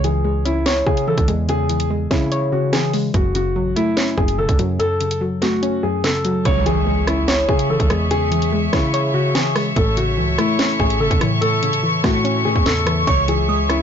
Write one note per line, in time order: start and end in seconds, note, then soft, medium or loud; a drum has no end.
0.00 0.83 C#2 loud
0.00 0.85 C#3 loud
0.00 1.06 E3 medium
0.04 0.43 G#4 medium
0.04 closed hi-hat medium
0.24 1.27 G#3 medium
0.45 1.49 C#4 medium
0.45 0.84 E4 medium
0.45 closed hi-hat medium
0.66 1.70 C#5 medium
0.66 snare loud
0.66 closed hi-hat medium
0.86 1.47 C#3 medium
0.86 1.16 C#3 loud
0.86 1.04 G#4 medium
0.86 kick loud
0.97 closed hi-hat medium
1.07 1.68 E3 medium
1.07 1.25 A4 medium
1.18 1.28 C#2 loud
1.18 kick medium
1.18 closed hi-hat medium
1.28 2.07 E2 loud
1.28 1.89 G#3 medium
1.28 closed hi-hat medium
1.48 2.51 C#3 loud
1.48 1.88 G#4 medium
1.48 closed hi-hat medium
1.69 2.72 E3 medium
1.69 closed hi-hat medium
1.80 closed hi-hat medium
1.90 2.92 G#3 medium
2.11 3.10 C#3 loud
2.11 3.14 C#4 medium
2.11 2.50 E4 medium
2.11 kick loud
2.11 snare medium
2.11 closed hi-hat medium
2.32 3.14 C#5 medium
2.32 closed hi-hat medium
2.52 3.14 C#3 medium
2.52 2.70 F#4 medium
2.73 3.14 E3 medium
2.73 2.90 G#4 medium
2.73 snare loud
2.73 closed hi-hat medium
2.93 3.14 G#3 medium
2.93 open hi-hat medium
3.14 3.57 F#1 loud
3.14 4.17 F#2 loud
3.14 3.32 F#4 medium
3.14 kick loud
3.14 closed hi-hat medium
3.35 4.37 C#3 medium
3.35 3.74 F#4 medium
3.35 closed hi-hat medium
3.56 3.75 A1 loud
3.56 4.58 F#3 medium
3.76 4.80 A3 medium
3.76 4.15 E4 medium
3.76 closed hi-hat medium
3.97 5.00 C#4 loud
3.97 snare loud
3.97 closed hi-hat medium
4.18 4.40 F#1 loud
4.18 4.78 F#2 medium
4.18 4.35 G#4 medium
4.18 kick loud
4.28 closed hi-hat medium
4.38 4.48 E1 medium
4.38 4.99 C#3 medium
4.38 4.56 A4 medium
4.49 4.59 C#2 loud
4.49 kick medium
4.49 closed hi-hat medium
4.59 4.79 F#2 loud
4.59 5.20 F#3 medium
4.59 closed hi-hat medium
4.79 5.82 F#2 loud
4.79 5.18 A4 medium
4.79 closed hi-hat medium
5.01 6.03 C#3 medium
5.01 closed hi-hat medium
5.11 closed hi-hat medium
5.21 6.24 F#3 medium
5.42 6.45 A3 medium
5.42 5.81 F#4 medium
5.42 snare medium
5.42 closed hi-hat medium
5.63 6.45 C#4 medium
5.63 closed hi-hat medium
5.83 6.45 F#2 medium
5.83 6.01 G#4 medium
6.04 6.44 C#3 medium
6.04 6.43 A4 medium
6.04 snare loud
6.04 closed hi-hat medium
6.25 6.45 F#3 medium
6.25 closed hi-hat medium
6.45 7.45 C#2 loud
6.45 7.48 C#3 loud
6.45 9.73 G#4 medium
6.45 13.82 C#5 medium
6.45 6.63 C#5 loud
6.45 13.03 E5 medium
6.45 13.82 C#6 medium
6.45 kick loud
6.45 closed hi-hat medium
6.45 impact medium
6.66 7.69 E3 medium
6.66 7.05 G#4 medium
6.66 closed hi-hat medium
6.87 7.89 G#3 medium
7.07 8.11 C#4 medium
7.07 7.46 E4 medium
7.07 cross-stick medium
7.07 closed hi-hat medium
7.28 8.32 C#5 loud
7.28 snare loud
7.28 closed hi-hat loud
7.49 7.78 C#3 loud
7.49 8.10 C#3 medium
7.49 7.67 G#4 medium
7.49 kick loud
7.59 closed hi-hat medium
7.70 8.30 E3 medium
7.70 7.87 A4 medium
7.80 7.90 C#2 loud
7.80 kick medium
7.80 closed hi-hat medium
7.90 8.70 E2 loud
7.90 8.51 G#3 medium
7.90 cross-stick loud
7.90 closed hi-hat medium
8.11 9.13 C#3 medium
8.11 8.50 G#4 loud
8.11 closed hi-hat medium
8.31 9.34 E3 medium
8.31 closed hi-hat medium
8.42 closed hi-hat medium
8.52 9.55 G#3 medium
8.73 9.72 C#3 loud
8.73 9.76 C#4 medium
8.73 9.12 E4 medium
8.73 kick loud
8.73 cross-stick medium
8.73 snare medium
8.73 closed hi-hat medium
8.94 9.76 C#5 loud
8.94 closed hi-hat loud
9.14 9.76 C#3 medium
9.14 9.32 F#4 medium
9.35 9.76 E3 medium
9.35 9.52 G#4 medium
9.35 snare loud
9.35 closed hi-hat medium
9.56 9.76 G#3 medium
9.56 cross-stick loud
9.56 open hi-hat medium
9.76 10.19 A1 loud
9.76 10.79 A2 medium
9.76 13.04 A4 medium
9.76 9.94 A4 medium
9.76 kick loud
9.76 closed hi-hat medium
9.97 10.99 C#3 medium
9.97 10.36 F#4 medium
9.97 closed hi-hat medium
10.17 10.37 C#2 loud
10.17 11.20 E3 medium
10.38 11.42 A3 medium
10.38 10.77 E4 medium
10.38 cross-stick loud
10.38 closed hi-hat medium
10.59 11.63 C#4 medium
10.59 snare loud
10.59 closed hi-hat medium
10.80 11.02 A1 loud
10.80 11.41 A2 medium
10.80 10.98 G#4 medium
10.80 kick loud
10.90 closed hi-hat medium
11.00 11.10 G#1 loud
11.00 11.61 C#3 medium
11.00 11.18 A4 medium
11.11 11.20 E2 loud
11.11 kick medium
11.11 closed hi-hat medium
11.21 11.71 A2 loud
11.21 11.82 E3 medium
11.21 cross-stick loud
11.21 closed hi-hat medium
11.41 12.44 A2 loud
11.41 11.80 A4 loud
11.41 closed hi-hat medium
11.63 12.64 C#3 medium
11.63 closed hi-hat medium
11.73 closed hi-hat medium
11.83 12.85 E3 medium
12.04 12.47 A2 loud
12.04 13.07 A3 loud
12.04 12.43 F#4 medium
12.04 kick loud
12.04 cross-stick loud
12.04 snare medium
12.04 closed hi-hat medium
12.24 13.07 C#4 loud
12.24 closed hi-hat medium
12.45 13.07 A2 medium
12.45 12.55 E3 loud
12.45 12.63 G#4 medium
12.56 13.05 E2 loud
12.56 kick loud
12.66 13.06 C#3 medium
12.66 13.05 A4 medium
12.66 snare loud
12.66 closed hi-hat medium
12.86 13.07 E3 medium
12.86 cross-stick loud
12.86 closed hi-hat medium
13.07 13.82 C#2 loud
13.07 13.82 C#3 loud
13.07 13.82 G#4 medium
13.07 13.25 C#5 medium
13.07 13.82 E5 medium
13.07 13.46 C#6 loud
13.07 kick loud
13.07 closed hi-hat medium
13.28 13.82 E3 medium
13.28 13.67 G#4 medium
13.28 closed hi-hat medium
13.49 13.82 G#3 medium
13.49 13.82 D#6 medium
13.69 13.82 C#4 medium
13.69 13.82 E4 medium
13.69 cross-stick medium
13.69 closed hi-hat medium